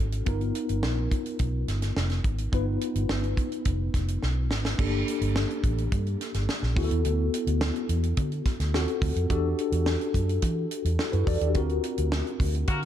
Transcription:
Already playing: tine electric piano C#4 E4 F#4 A4
0.00 fingered electric bass G#1
0.12 closed hi-hat
0.26 fingered electric bass G1, tine electric piano B3 D#4 F4 A#4, kick, closed hi-hat
0.41 closed hi-hat
0.55 closed hi-hat
0.69 fingered electric bass G1, closed hi-hat
0.83 fingered electric bass A#1, snare
1.11 kick, closed hi-hat
1.26 closed hi-hat
1.39 fingered electric bass B1, kick, closed hi-hat
1.68 fingered electric bass G1, snare, closed hi-hat
1.82 snare, closed hi-hat
1.96 fingered electric bass F1, snare
2.10 snare, closed hi-hat
2.24 fingered electric bass G#1, kick, closed hi-hat
2.38 closed hi-hat
2.52 fingered electric bass G1, tine electric piano B3 D#4 F4 B4, kick, closed hi-hat
2.81 closed hi-hat
2.95 fingered electric bass G1, closed hi-hat
3.09 fingered electric bass G1, snare
3.24 closed hi-hat
3.37 kick, closed hi-hat
3.52 closed hi-hat
3.65 fingered electric bass F1, kick, closed hi-hat
3.94 fingered electric bass F1, kick, snare, closed hi-hat
4.08 closed hi-hat
4.23 fingered electric bass B1, snare
4.51 fingered electric bass G#1, snare
4.65 snare
4.78 fingered electric bass G1, tine electric piano A#3 D4 G4 A4, kick, crash
5.08 closed hi-hat
5.21 fingered electric bass G1, closed hi-hat
5.36 snare
5.50 closed hi-hat
5.64 fingered electric bass A1, kick, closed hi-hat
5.78 closed hi-hat
5.92 fingered electric bass G2, kick, closed hi-hat
6.06 closed hi-hat
6.21 snare, closed hi-hat
6.34 fingered electric bass G1, snare, closed hi-hat
6.49 snare
6.63 fingered electric bass A#1, snare
6.75 fingered electric bass D2, tine electric piano B3 E4 F#4 G#4, kick, open hi-hat
6.84 tine electric piano A4
6.91 fingered electric bass D#2, closed hi-hat
7.05 fingered electric bass D2, closed hi-hat
7.34 closed hi-hat
7.47 fingered electric bass D2, closed hi-hat
7.61 snare
7.76 closed hi-hat
7.89 fingered electric bass E2, closed hi-hat
8.03 closed hi-hat
8.17 fingered electric bass D3, kick, closed hi-hat
8.32 closed hi-hat
8.46 kick, snare, closed hi-hat
8.60 fingered electric bass D2, snare, closed hi-hat
8.74 fingered electric bass D#2, tine electric piano C4 F4 F#4 G#4, snare
8.82 tine electric piano A4
8.88 closed hi-hat
9.02 fingered electric bass D2, kick, open hi-hat
9.16 fingered electric bass F2, closed hi-hat
9.30 fingered electric bass E2, tine electric piano D4 F#4 G4 A4, kick, closed hi-hat
9.59 closed hi-hat
9.72 fingered electric bass E2, closed hi-hat
9.86 snare
10.01 closed hi-hat
10.14 fingered electric bass F#2, kick, closed hi-hat
10.29 closed hi-hat
10.42 fingered electric bass E3, kick, closed hi-hat
10.71 closed hi-hat
10.85 fingered electric bass E2, closed hi-hat
10.99 tine electric piano E4 A4, snare
11.12 fingered electric bass F#2, tine electric piano F#4 B4, closed hi-hat
11.27 fingered electric bass E2, tine electric piano A4 D5, kick, open hi-hat
11.41 fingered electric bass D#2, tine electric piano D4 G4, closed hi-hat
11.54 fingered electric bass D2, tine electric piano C4 F4 F#4 A#4, kick, closed hi-hat
11.69 closed hi-hat
11.84 closed hi-hat
11.98 fingered electric bass D2, closed hi-hat
12.12 snare
12.27 closed hi-hat
12.40 fingered electric bass D2, kick, open hi-hat
12.55 closed hi-hat
12.67 fingered electric bass D3, horn section A#3 F#4 A#4, kick, closed hi-hat

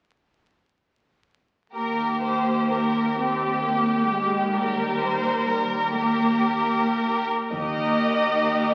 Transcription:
1.74 cello section D#2, viola section A#3, violin section G4 A#4
2.23 violin section C5
2.71 violin section A#4
3.17 viola section C4, violin section G4
3.63 viola section A#3
4.09 viola section G#3
4.54 viola section G3, violin section G4 A#4
5.01 violin section C5
5.45 violin section A#4
5.94 viola section A#3, violin section G4 A#4
7.52 double bass section D#2, cello section D#2, viola section A#3 D#4, violin section G4 A#4 D#5

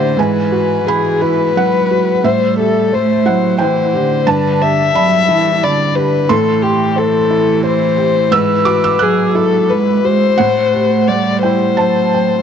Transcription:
Already playing: felt piano A2 E4 G4 C5 D5 E5 F#5 G5, cello D3, violin C5
0.17 felt piano G#2 G#5, cello E3, violin B4
0.52 felt piano F#4
0.86 cello E3, violin G#4, felt piano B4 B5
1.21 felt piano E4, violin B4
1.54 cello F#3, felt piano B4 F#5
1.91 felt piano F#4
2.23 felt piano A2 E5, cello G3, violin C5
2.59 felt piano G4, violin A4
2.92 cello A3, felt piano C5, violin C5
3.26 cello F#3, felt piano E4 F#5
3.58 cello E3, violin C5, felt piano C5 G5
3.93 cello D3, felt piano G4
4.27 felt piano G2 A5, violin B4
4.61 felt piano G4, violin E5
4.95 cello F#3, felt piano D5 B5
5.28 cello E3, felt piano E4
5.62 cello D3, violin D5, felt piano D5 B5
5.95 felt piano G4, violin B4
6.29 felt piano A2 C6, cello E3, violin A4
6.62 violin G4, felt piano G4
6.96 violin A4, felt piano C5
7.30 felt piano E4
7.64 felt piano C5, violin C5
7.97 felt piano G4
8.31 felt piano G#2 E6, violin B4
8.65 felt piano F#4 D6
8.84 felt piano E6
8.99 cello F#3, violin G#4, felt piano B4 F#6
9.35 felt piano E4, violin A4
9.70 cello G#3, violin B4, felt piano B4
10.05 cello G#3, felt piano F#4, violin C5
10.38 felt piano A2 F#5, cello A3
10.74 felt piano G4
11.08 cello G3, felt piano C5, violin D5
11.43 felt piano E4 G5, violin C5
11.77 cello F#3, felt piano C5 A5
12.14 felt piano G5

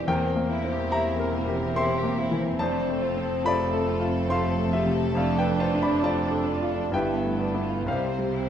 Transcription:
0.07 double bass section E1, cello section E2, grand piano E2 A#4 G5, violin section A#3 A#4, french horn section A#3 C4, viola section C4, bassoon C4
0.29 violin section C4
0.36 grand piano A#3
0.49 bassoon E4, violin section E4
0.64 grand piano C4
0.72 violin section G4
0.91 violin section E4, grand piano G4 E5 A#5
1.14 violin section C4
1.20 grand piano A#4
1.34 violin section A#3
1.48 grand piano G4
1.55 violin section C4
1.76 grand piano C4 E5 C6, violin section E4, bassoon G4
1.97 violin section G4
2.03 grand piano A#3
2.18 violin section E4, bassoon E4
2.31 grand piano E3
2.39 violin section C4
2.59 double bass section F1, grand piano F2 C5 A5, cello section F2, violin section A3 A4, french horn section A3, bassoon D4
2.82 violin section C4
2.89 grand piano A3
3.02 bassoon C4, violin section F4
3.17 grand piano C4
3.25 violin section C4
3.44 violin section A3, bassoon A3, grand piano F4 D5 B5
3.67 violin section C4
3.73 grand piano A4
3.88 violin section F4
4.00 grand piano F4
4.09 violin section C4
4.28 violin section A3, grand piano C4 F5 C6
4.52 violin section C4
4.57 grand piano A3
4.73 violin section F4, grand piano G4 E5
4.86 grand piano C3
4.94 violin section C4
5.15 grand piano F2 A4 F5, violin section A3, viola section D4, bassoon D4, french horn section D4
5.38 violin section D4, grand piano B4 G5
5.44 grand piano A3
5.59 violin section F4, grand piano C5 A5
5.73 grand piano D4
5.82 violin section D4, grand piano D5 B5
6.03 violin section A3, bassoon C4, grand piano F4 D5 A5
6.25 violin section D4
6.31 grand piano A4
6.47 bassoon D4, violin section F4
6.62 grand piano F4
6.70 violin section D4
6.92 double bass section G1, grand piano G2 B4 G5, cello section G2, violin section G3, french horn section B3 E4, viola section B3, bassoon E4
7.17 violin section B3
7.23 grand piano A3
7.40 bassoon B3, violin section D4
7.54 grand piano B3 E4
7.64 violin section F4
7.86 grand piano C2 C5 F5, double bass section C2, cello section C3, violin section G3 C5, french horn section C4 G4, viola section C4, bassoon C4
8.10 violin section C4
8.19 grand piano G3
8.35 violin section E4

